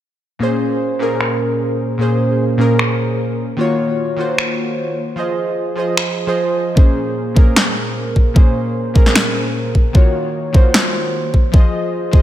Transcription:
0.39 0.98 A#2 medium
0.39 0.98 A#3 medium
0.39 0.99 C#4 medium
0.39 0.99 G#4 medium
0.43 1.00 C5 medium
0.99 1.97 A#2 medium
0.99 1.97 A#3 medium
0.99 1.98 C#4 medium
0.99 1.98 G#4 medium
0.99 1.99 A#4 medium
1.21 finger snap medium
1.98 2.56 A#2 medium
1.98 2.57 A#3 medium
1.98 2.57 C#4 medium
1.98 2.58 G#4 medium
2.02 2.58 C5 medium
2.57 3.37 A#2 medium
2.57 3.37 A#3 medium
2.57 3.38 C#4 medium
2.57 3.38 G#4 medium
2.57 3.39 A#4 medium
2.79 finger snap medium
3.57 4.15 D#3 medium
3.57 4.16 A#3 medium
3.57 4.16 F4 medium
3.57 4.17 F#4 medium
3.61 4.17 C#5 medium
4.16 4.96 D#3 medium
4.16 4.96 A#3 medium
4.16 4.97 F4 medium
4.16 4.97 F#4 medium
4.20 4.98 C5 medium
4.38 finger snap medium
5.16 5.74 F3 medium
5.16 5.75 F4 medium
5.16 5.75 G#4 medium
5.16 5.76 C5 medium
5.16 5.76 D#5 medium
5.76 6.25 F3 medium
5.76 6.25 F4 medium
5.76 6.26 G#4 medium
5.76 6.26 C5 medium
5.76 6.27 D#5 medium
5.97 finger snap medium
6.27 6.41 F3 medium
6.27 6.42 F4 medium
6.27 6.42 G#4 medium
6.27 6.42 C5 medium
6.27 6.42 D#5 medium
6.75 7.33 A#2 medium
6.75 7.34 A#3 medium
6.75 7.34 C#4 medium
6.75 7.35 G#4 medium
6.75 kick loud
6.79 7.35 C5 medium
7.34 8.33 A#2 medium
7.34 8.33 A#3 medium
7.34 8.34 C#4 medium
7.34 8.34 G#4 medium
7.34 kick loud
7.39 8.35 A#4 medium
7.56 finger snap medium
7.56 snare loud
8.16 kick medium
8.34 8.92 A#2 medium
8.34 8.93 A#3 medium
8.34 8.93 C#4 medium
8.34 8.94 G#4 medium
8.34 kick loud
8.38 8.94 C5 medium
8.94 9.73 A#2 medium
8.94 9.73 A#3 medium
8.94 9.74 C#4 medium
8.94 9.74 G#4 medium
8.94 9.75 A#4 medium
8.94 kick medium
9.06 snare soft
9.15 finger snap medium
9.15 snare loud
9.75 kick medium
9.93 10.51 D#3 medium
9.93 10.52 A#3 medium
9.93 10.52 F4 medium
9.93 10.53 F#4 medium
9.93 10.53 C#5 medium
9.93 kick loud
10.52 11.32 D#3 medium
10.52 11.32 A#3 medium
10.52 11.33 F4 medium
10.52 11.33 F#4 medium
10.52 11.34 C5 medium
10.52 kick medium
10.74 finger snap medium
10.74 snare loud
11.34 kick medium
11.52 12.10 F3 medium
11.52 12.11 F4 medium
11.52 12.11 G#4 medium
11.52 12.12 C5 medium
11.52 kick loud
11.56 12.12 D#5 medium
12.11 12.22 F3 medium
12.11 12.22 F4 medium
12.11 12.22 G#4 medium
12.11 12.22 C5 medium
12.11 kick medium
12.15 12.22 D#5 medium

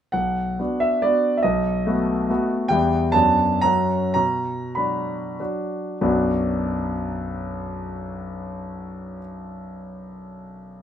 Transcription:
0.12 0.58 B1 soft
0.12 0.81 F#5 medium
0.59 0.99 B3 soft
0.59 1.00 D4 soft
0.59 1.00 F#4 soft
0.80 1.03 E5 medium
1.02 1.40 B3 soft
1.02 1.40 D4 soft
1.02 1.41 F#4 soft
1.02 1.37 D5 medium
1.37 1.44 E5 soft
1.43 1.85 B1 medium
1.43 2.49 D#5 medium
1.86 2.25 A3 soft
1.86 2.25 B3 soft
1.86 2.26 F#4 soft
2.30 2.67 A3 soft
2.30 2.67 B3 soft
2.30 2.67 F#4 medium
2.68 3.13 E2 medium
2.68 3.11 G3 soft
2.68 3.11 B3 soft
2.68 3.11 E4 soft
2.68 3.14 G5 medium
3.12 3.61 F#2 medium
3.12 3.59 F#3 soft
3.12 3.59 B3 soft
3.12 3.60 D4 soft
3.12 3.62 A5 medium
3.61 4.14 F#2 medium
3.61 4.12 F#3 soft
3.61 4.12 C#4 soft
3.61 4.13 F#4 soft
3.61 4.12 A#5 medium
4.14 4.74 B2 soft
4.14 4.74 A#5 medium
4.75 5.36 F#3 soft
4.75 5.36 D4 soft
4.75 5.36 F#4 soft
4.75 5.39 B5 medium
5.40 5.97 F#3 soft
5.40 5.98 D4 soft
5.40 5.98 F#4 soft
6.01 9.18 B1 medium
6.01 9.19 F#2 soft
6.01 9.19 F#3 soft
6.01 9.18 B3 soft
6.01 9.19 D4 soft
6.01 9.19 F#4 soft

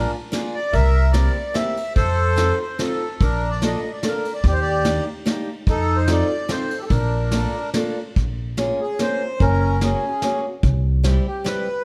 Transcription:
0.00 0.14 A#3 medium
0.00 0.12 D4 medium
0.00 0.13 D4 medium
0.00 0.14 F4 medium
0.00 0.14 G#4 medium
0.00 0.12 A#4 medium
0.32 0.54 A#3 medium
0.32 0.54 D4 medium
0.32 0.55 F4 medium
0.32 0.55 G#4 medium
0.32 snare medium
0.32 ride soft
0.55 0.74 D5 loud
0.73 1.27 C2 loud
0.73 1.32 A#4 medium
0.73 1.11 E5 loud
0.73 kick medium
0.73 ride soft
1.12 1.36 A#3 medium
1.12 1.36 C4 medium
1.12 1.36 E4 medium
1.12 1.36 G4 medium
1.12 1.56 D5 medium
1.12 snare medium
1.12 ride soft
1.54 1.77 A#3 medium
1.54 1.77 C4 medium
1.54 1.77 E4 soft
1.54 1.77 G4 medium
1.54 1.93 E5 medium
1.54 snare medium
1.54 ride soft
1.77 ride soft
1.96 2.50 F2 loud
1.96 2.56 A4 medium
1.96 2.59 C5 loud
1.96 kick medium
1.96 ride soft
2.36 2.59 C4 medium
2.36 2.59 D#4 medium
2.36 2.59 F4 medium
2.36 2.60 A4 medium
2.36 snare medium
2.36 ride soft
2.60 2.80 C5 medium
2.79 3.01 C4 medium
2.79 3.01 D#4 soft
2.79 3.01 F4 medium
2.79 3.02 A4 medium
2.79 3.23 A4 medium
2.79 snare medium
2.79 ride soft
3.21 3.74 A#1 loud
3.21 3.81 D4 medium
3.21 3.50 A#4 loud
3.21 kick medium
3.21 ride soft
3.50 3.64 D5 loud
3.62 3.84 A#3 medium
3.62 3.84 D4 medium
3.62 3.84 F4 medium
3.62 3.84 A4 medium
3.62 3.92 D#5 medium
3.62 snare medium
3.62 ride soft
3.93 4.05 D5 medium
4.03 4.25 A#3 medium
4.03 4.25 D4 medium
4.03 4.25 F4 soft
4.03 4.25 A4 medium
4.03 snare medium
4.03 ride soft
4.07 4.33 A#4 medium
4.25 ride soft
4.34 4.47 D5 medium
4.44 4.97 D#2 loud
4.44 5.04 G4 medium
4.44 kick medium
4.44 ride soft
4.49 4.60 C5 medium
4.49 4.54 D5 loud
4.61 5.05 D5 loud
4.84 5.07 A#3 medium
4.84 5.07 D4 medium
4.84 5.07 D#4 medium
4.84 5.07 G4 medium
4.84 snare medium
4.84 ride soft
5.26 5.48 A#3 medium
5.26 5.48 D4 medium
5.26 5.48 D#4 medium
5.26 5.49 G4 medium
5.26 snare medium
5.26 ride soft
5.67 6.21 F2 loud
5.67 6.27 D#4 medium
5.67 5.97 A4 loud
5.67 kick medium
5.67 ride soft
5.97 6.10 C5 loud
6.08 6.30 C4 medium
6.08 6.30 D#4 medium
6.08 6.30 F4 medium
6.08 6.31 A4 medium
6.08 6.52 D5 medium
6.08 snare medium
6.08 ride soft
6.49 6.71 C4 medium
6.49 6.71 D#4 medium
6.49 6.71 F4 medium
6.49 6.71 A4 medium
6.49 6.79 C5 medium
6.49 snare medium
6.49 ride soft
6.71 ride soft
6.78 6.85 G4 medium
6.78 6.82 A4 medium
6.86 6.91 A4 medium
6.86 7.70 A#4 medium
6.86 ride soft
6.90 7.45 A#1 loud
6.90 7.70 D4 medium
6.90 kick medium
7.31 7.54 A#3 medium
7.31 7.55 D4 medium
7.31 7.55 F4 soft
7.31 7.55 A4 medium
7.31 snare medium
7.31 ride medium
7.74 7.97 A#3 medium
7.74 7.97 D4 medium
7.74 7.97 F4 medium
7.74 7.97 A4 medium
7.74 snare medium
7.74 ride soft
8.16 8.70 A#1 medium
8.16 kick medium
8.16 closed hi-hat soft
8.57 8.79 A#3 medium
8.57 8.80 C#4 medium
8.57 8.80 F4 medium
8.57 8.80 G#4 medium
8.57 snare medium
8.57 closed hi-hat soft
8.81 9.01 G#4 medium
8.99 9.21 A#3 medium
8.99 9.21 C#4 medium
8.99 9.22 F4 medium
8.99 9.22 G#4 medium
8.99 9.43 C5 medium
8.99 snare medium
8.99 closed hi-hat soft
9.40 9.94 F#1 medium
9.40 9.82 C#4 medium
9.40 9.83 A#4 loud
9.40 kick medium
9.40 closed hi-hat soft
9.81 10.03 A#3 medium
9.81 10.03 C#4 soft
9.81 10.41 C#4 soft
9.81 10.03 F#4 medium
9.81 10.04 G#4 medium
9.81 10.41 G#4 medium
9.81 snare medium
9.81 closed hi-hat soft
10.22 10.44 A#3 medium
10.22 10.44 C#4 medium
10.22 10.44 F#4 medium
10.22 10.45 G#4 medium
10.22 snare medium
10.22 closed hi-hat medium
10.63 11.17 C2 loud
10.63 kick medium
10.63 closed hi-hat soft
11.03 11.26 G3 medium
11.03 11.26 C4 medium
11.03 11.26 E4 medium
11.03 11.26 G4 medium
11.03 snare medium
11.03 closed hi-hat medium
11.27 11.46 G4 medium
11.44 11.67 G3 medium
11.44 11.67 C4 medium
11.44 11.67 E4 soft
11.44 11.67 G4 medium
11.44 11.84 B4 medium
11.44 snare medium
11.44 closed hi-hat soft

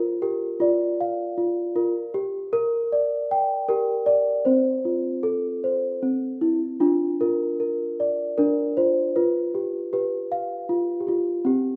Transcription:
0.00 0.59 F4 medium
0.22 0.62 G4 medium
0.22 1.75 A#4 medium
0.60 1.36 F4 medium
0.60 2.14 D5 medium
1.01 2.15 F5 medium
1.38 1.75 F4 medium
1.76 1.93 F4 medium
1.76 2.14 A#4 medium
2.14 2.50 G4 medium
2.53 3.67 A#4 medium
2.92 4.05 D5 medium
3.31 4.47 G5 medium
3.69 4.46 G4 medium
3.69 4.07 A#4 medium
4.06 4.46 A#4 medium
4.06 4.43 D5 medium
4.45 6.01 C4 medium
4.45 5.20 C5 medium
4.85 6.02 F4 medium
5.23 6.45 A4 medium
5.64 6.03 C5 medium
6.03 6.81 C4 medium
6.41 6.59 E4 medium
6.80 8.37 D4 medium
6.80 7.17 F4 medium
7.21 8.76 F4 medium
7.21 7.59 A#4 medium
7.60 8.37 A#4 medium
8.00 9.16 D5 medium
8.38 9.16 D4 medium
8.38 8.74 A#4 medium
8.77 9.15 F4 medium
8.77 9.13 C5 medium
9.16 10.68 F4 medium
9.16 9.92 B4 medium
9.55 9.92 G4 medium
9.93 10.99 G4 medium
9.93 11.46 B4 medium
10.32 11.46 F5 medium
10.69 11.07 F4 medium
11.01 11.06 G4 medium
11.07 11.47 F4 medium
11.07 11.45 G4 medium
11.45 11.76 C4 medium
11.45 11.76 G4 medium

